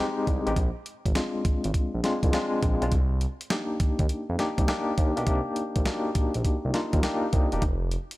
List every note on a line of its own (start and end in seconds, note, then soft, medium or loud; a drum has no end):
0.00 0.46 G#3 loud
0.00 0.47 C4 medium
0.00 0.47 D#4 medium
0.00 0.47 G4 loud
0.27 0.41 C2 loud
0.27 kick loud
0.27 closed hi-hat medium
0.46 0.54 A1 medium
0.46 0.56 G#3 medium
0.46 0.56 C4 medium
0.46 0.57 D#4 medium
0.46 0.57 G4 loud
0.46 closed hi-hat medium
0.56 0.70 A#1 loud
0.56 kick loud
0.56 closed hi-hat medium
0.86 closed hi-hat medium
1.06 1.13 G#1 medium
1.06 kick medium
1.06 closed hi-hat medium
1.15 1.75 G#3 medium
1.15 1.76 C4 medium
1.15 1.76 D4 medium
1.15 1.76 F4 medium
1.15 snare loud
1.15 closed hi-hat medium
1.45 1.53 G#1 soft
1.45 kick loud
1.45 closed hi-hat medium
1.64 1.72 G#1 loud
1.64 closed hi-hat medium
1.74 kick medium
1.74 closed hi-hat medium
1.94 2.01 A#1 medium
2.04 2.27 G#3 medium
2.04 2.27 C4 medium
2.04 2.27 D4 medium
2.04 2.27 F4 loud
2.04 snare medium
2.04 closed hi-hat medium
2.23 2.30 C2 medium
2.23 kick medium
2.23 closed hi-hat medium
2.33 2.63 G#3 medium
2.33 2.63 C4 medium
2.33 2.63 D4 medium
2.33 2.64 F4 loud
2.33 2.61 F5 medium
2.33 snare loud
2.33 closed hi-hat medium
2.63 2.76 A#1 medium
2.63 kick loud
2.63 closed hi-hat medium
2.82 2.89 B1 medium
2.82 2.92 G#3 medium
2.82 2.92 C4 medium
2.82 2.92 D4 medium
2.82 2.92 F4 loud
2.82 closed hi-hat medium
2.92 3.26 C2 loud
2.92 kick loud
2.92 closed hi-hat medium
3.21 closed hi-hat medium
3.41 closed hi-hat medium
3.50 4.11 A#3 medium
3.50 4.11 D4 medium
3.50 4.11 D#4 medium
3.50 4.11 G4 medium
3.50 snare loud
3.50 closed hi-hat medium
3.80 3.88 D#2 soft
3.80 kick loud
3.80 closed hi-hat medium
3.99 4.06 D#2 medium
3.99 kick loud
3.99 closed hi-hat medium
4.09 closed hi-hat medium
4.29 4.36 F2 medium
4.39 4.62 A#3 medium
4.39 4.62 D4 medium
4.39 4.62 D#4 medium
4.39 4.62 G4 loud
4.39 snare medium
4.39 closed hi-hat medium
4.58 4.65 C2 medium
4.58 kick medium
4.58 closed hi-hat medium
4.68 4.98 A#3 loud
4.68 4.98 D4 medium
4.68 4.98 D#4 medium
4.68 4.99 G4 loud
4.68 snare loud
4.68 closed hi-hat medium
4.98 5.12 D#2 medium
4.98 kick medium
4.98 closed hi-hat medium
5.17 5.24 B1 loud
5.17 5.64 A#3 medium
5.17 5.64 D4 medium
5.17 5.64 D#4 medium
5.17 5.64 G4 loud
5.17 closed hi-hat medium
5.27 5.41 C2 loud
5.27 kick loud
5.27 closed hi-hat medium
5.56 closed hi-hat medium
5.76 5.83 A#1 medium
5.76 kick medium
5.76 closed hi-hat medium
5.86 6.46 A#3 medium
5.86 6.46 D4 medium
5.86 6.46 D#4 medium
5.86 5.95 F#4 medium
5.86 snare loud
5.86 closed hi-hat medium
5.93 6.50 G4 medium
6.15 6.23 A#1 soft
6.15 kick medium
6.15 closed hi-hat medium
6.34 6.42 A#1 medium
6.34 closed hi-hat medium
6.44 kick medium
6.44 closed hi-hat medium
6.65 6.72 C2 medium
6.74 6.97 A#3 medium
6.74 6.97 D4 medium
6.74 6.97 D#4 medium
6.74 6.98 F4 loud
6.74 snare medium
6.74 closed hi-hat medium
6.93 7.00 D#2 medium
6.93 kick medium
6.93 closed hi-hat medium
7.03 7.33 A#3 loud
7.03 7.34 D4 medium
7.03 7.34 D#4 medium
7.03 7.34 G4 loud
7.03 7.31 G5 medium
7.03 snare loud
7.03 closed hi-hat medium
7.33 7.47 C2 loud
7.33 7.60 D#5 medium
7.33 kick loud
7.33 closed hi-hat medium
7.52 7.60 E1 medium
7.52 7.62 A#3 medium
7.52 7.62 D4 medium
7.52 7.62 D#4 medium
7.52 7.63 G4 loud
7.52 closed hi-hat soft
7.62 7.97 F1 loud
7.62 kick loud
7.62 closed hi-hat medium
7.91 closed hi-hat medium
8.11 closed hi-hat medium